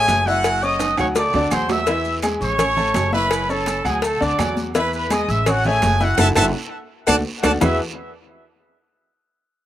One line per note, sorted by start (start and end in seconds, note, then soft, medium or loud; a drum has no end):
0.00 0.20 A3 medium
0.00 0.24 G#4 medium
0.00 0.20 C#5 medium
0.00 0.21 E5 medium
0.00 0.23 G#5 loud
0.08 0.92 F#1 loud
0.08 cowbell medium
0.08 high conga medium
0.08 low timbale medium
0.08 low agogo medium
0.08 short guiro medium
0.08 maracas medium
0.26 0.56 E4 medium
0.26 0.62 F#4 medium
0.26 0.57 E5 medium
0.26 0.62 F#5 loud
0.26 0.57 E6 medium
0.26 high conga medium
0.26 short guiro medium
0.26 maracas soft
0.44 cowbell loud
0.44 high conga soft
0.44 low agogo loud
0.44 long guiro medium
0.44 claves medium
0.44 maracas medium
0.62 0.92 C#4 medium
0.62 0.92 C#5 medium
0.62 0.98 D#5 loud
0.62 0.92 C#6 medium
0.62 0.98 D#6 medium
0.62 high conga soft
0.62 maracas soft
0.79 cowbell medium
0.79 high conga medium
0.79 high timbale medium
0.79 low agogo medium
0.79 short guiro medium
0.79 maracas medium
0.97 1.31 D2 medium
0.97 1.13 F#3 medium
0.97 1.13 F#4 medium
0.97 1.07 C#5 loud
0.97 1.13 F#5 medium
0.97 1.07 C#6 medium
0.97 high timbale loud
0.97 low agogo loud
0.97 short guiro medium
0.97 claves medium
0.97 maracas soft
1.16 1.31 A3 medium
1.16 1.31 A4 medium
1.16 1.50 D5 loud
1.16 1.31 A5 medium
1.16 1.50 D6 medium
1.16 cowbell loud
1.16 high conga soft
1.16 low timbale medium
1.16 long guiro medium
1.16 maracas medium
1.33 1.50 D2 medium
1.33 1.49 D3 loud
1.33 1.50 D4 loud
1.33 1.50 D5 loud
1.33 high conga soft
1.33 low timbale medium
1.33 maracas soft
1.51 2.36 E2 loud
1.51 1.82 F#3 medium
1.51 1.82 F#4 medium
1.51 1.70 C5 loud
1.51 1.82 F#5 medium
1.51 1.70 C6 medium
1.51 cowbell medium
1.51 high conga medium
1.51 low agogo loud
1.51 short guiro medium
1.51 claves medium
1.51 maracas medium
1.69 2.15 E5 loud
1.69 2.15 E6 medium
1.69 high conga medium
1.69 low timbale loud
1.69 short guiro medium
1.69 maracas soft
1.87 2.17 E3 loud
1.87 2.17 E4 medium
1.87 2.17 E5 medium
1.87 cowbell loud
1.87 long guiro medium
1.87 maracas medium
2.05 high conga soft
2.05 maracas soft
2.23 2.53 G#3 medium
2.23 2.53 G#4 medium
2.23 2.53 G#5 medium
2.23 cowbell medium
2.23 high conga loud
2.23 low timbale medium
2.23 low agogo loud
2.23 short guiro medium
2.23 claves medium
2.23 maracas medium
2.41 2.91 A1 loud
2.41 3.10 C#5 loud
2.41 3.10 C#6 medium
2.41 high conga soft
2.41 short guiro medium
2.41 maracas soft
2.59 2.74 C#4 medium
2.59 2.74 C#5 medium
2.59 2.75 C#6 medium
2.59 cowbell loud
2.59 high conga soft
2.59 low conga medium
2.59 low agogo loud
2.59 long guiro medium
2.59 claves medium
2.59 maracas medium
2.77 3.06 A3 medium
2.77 3.07 A4 medium
2.77 3.07 A5 medium
2.77 high conga soft
2.77 low conga medium
2.77 maracas soft
2.94 3.79 F#1 loud
2.94 cowbell medium
2.94 high conga medium
2.94 low timbale medium
2.94 low agogo medium
2.94 short guiro medium
2.94 maracas medium
3.13 3.42 E4 medium
3.13 3.47 B4 loud
3.13 3.42 E5 medium
3.13 3.47 B5 medium
3.13 3.43 E6 medium
3.13 high conga medium
3.13 short guiro medium
3.13 maracas soft
3.31 cowbell loud
3.31 low agogo loud
3.31 long guiro medium
3.31 claves medium
3.31 maracas medium
3.49 3.79 C#4 medium
3.49 3.86 A4 loud
3.49 3.79 C#5 medium
3.49 3.86 A5 medium
3.49 3.79 C#6 medium
3.49 high conga soft
3.49 maracas soft
3.66 cowbell medium
3.66 high conga medium
3.66 low timbale medium
3.66 low agogo medium
3.66 short guiro medium
3.66 maracas medium
3.84 4.18 D2 loud
3.84 4.00 F#3 medium
3.84 4.00 F#4 medium
3.84 4.03 G#4 medium
3.84 4.00 F#5 medium
3.84 4.03 G#5 medium
3.84 low agogo loud
3.84 short guiro medium
3.84 claves medium
3.84 maracas soft
4.02 4.18 A3 medium
4.02 4.18 A4 medium
4.02 4.22 A4 medium
4.02 4.19 A5 medium
4.02 4.22 A5 medium
4.02 cowbell loud
4.02 high conga soft
4.02 long guiro medium
4.02 maracas medium
4.21 4.38 D2 medium
4.21 4.36 D3 loud
4.21 4.36 D4 loud
4.21 4.36 D5 loud
4.21 4.58 D5 loud
4.21 4.58 D6 medium
4.21 high conga soft
4.21 maracas soft
4.38 5.23 E2 loud
4.38 4.68 F#3 medium
4.38 4.68 F#4 medium
4.38 4.68 F#5 medium
4.38 cowbell medium
4.38 high conga loud
4.38 low timbale medium
4.38 low agogo loud
4.38 short guiro medium
4.38 claves medium
4.38 maracas medium
4.57 high conga medium
4.57 short guiro medium
4.57 maracas soft
4.75 5.04 E3 medium
4.75 5.05 E4 medium
4.75 4.93 B4 loud
4.75 5.05 E5 medium
4.75 4.92 B5 medium
4.75 cowbell loud
4.75 high conga soft
4.75 long guiro medium
4.75 maracas medium
4.93 5.11 B4 medium
4.93 5.10 B5 medium
4.93 high conga soft
4.93 maracas soft
5.10 5.40 G#3 medium
5.10 5.40 G#4 medium
5.10 5.30 D#5 medium
5.10 5.40 G#5 medium
5.10 5.30 D#6 medium
5.10 cowbell medium
5.10 high conga loud
5.10 low timbale medium
5.10 low agogo loud
5.10 short guiro medium
5.10 claves medium
5.10 maracas medium
5.28 5.79 A1 loud
5.28 5.47 E5 loud
5.28 5.47 E6 medium
5.28 short guiro medium
5.28 maracas soft
5.46 5.61 C#4 medium
5.46 5.66 F#4 medium
5.46 5.61 C#5 medium
5.46 5.66 F#5 loud
5.46 5.62 C#6 medium
5.46 cowbell loud
5.46 high conga soft
5.46 low conga medium
5.46 low agogo loud
5.46 long guiro medium
5.46 claves medium
5.46 maracas medium
5.64 5.95 A3 medium
5.64 6.01 G#4 medium
5.64 5.95 C#5 medium
5.64 5.95 E5 medium
5.64 6.01 G#5 loud
5.64 high conga soft
5.64 low conga medium
5.64 maracas soft
5.82 6.16 F#1 loud
5.82 cowbell medium
5.82 high conga medium
5.82 low timbale medium
5.82 low agogo medium
5.82 short guiro medium
5.82 maracas medium
6.00 6.15 E4 medium
6.00 6.19 F#4 medium
6.00 6.15 E5 medium
6.00 6.17 F#5 loud
6.00 6.15 E6 medium
6.00 high conga medium
6.00 short guiro medium
6.00 maracas soft
6.18 6.31 F#1 loud
6.18 6.30 E4 loud
6.18 6.30 F#4 loud
6.18 6.30 A4 loud
6.18 6.27 E5 loud
6.18 6.27 F#5 loud
6.18 6.27 A5 loud
6.18 cowbell loud
6.18 high conga loud
6.18 high timbale loud
6.18 long guiro loud
6.18 claves loud
6.18 maracas loud
6.35 6.49 F#1 loud
6.35 6.48 E4 loud
6.35 6.48 F#4 loud
6.35 6.48 A4 loud
6.35 6.45 E5 loud
6.35 6.45 F#5 loud
6.35 6.44 A5 loud
6.35 cowbell loud
6.35 high conga loud
6.35 high timbale loud
6.35 long guiro loud
6.35 claves loud
6.35 maracas loud
7.07 7.21 D2 loud
7.07 7.19 D4 loud
7.07 7.19 F#4 loud
7.07 7.19 A4 loud
7.07 7.16 D5 loud
7.07 7.16 F#5 loud
7.07 7.16 A5 loud
7.07 cowbell loud
7.07 high conga loud
7.07 high timbale loud
7.07 long guiro loud
7.07 claves loud
7.07 maracas loud
7.43 7.57 D2 loud
7.43 7.55 D4 loud
7.43 7.55 F#4 loud
7.43 7.55 A4 loud
7.43 7.52 D5 loud
7.43 7.52 F#5 medium
7.43 7.52 A5 loud
7.43 cowbell loud
7.43 high conga loud
7.43 high timbale loud
7.43 long guiro loud
7.43 claves loud
7.43 maracas loud
7.61 7.79 E2 loud
7.61 7.78 E3 loud
7.61 7.78 B3 medium
7.61 7.78 E4 medium
7.61 7.78 F#4 medium
7.61 7.78 G#4 medium
7.61 7.78 B4 loud
7.61 7.78 E5 medium
7.61 low bongo loud
7.61 low conga loud
7.61 low timbale loud
7.61 long guiro loud
7.61 claves medium
7.61 maracas loud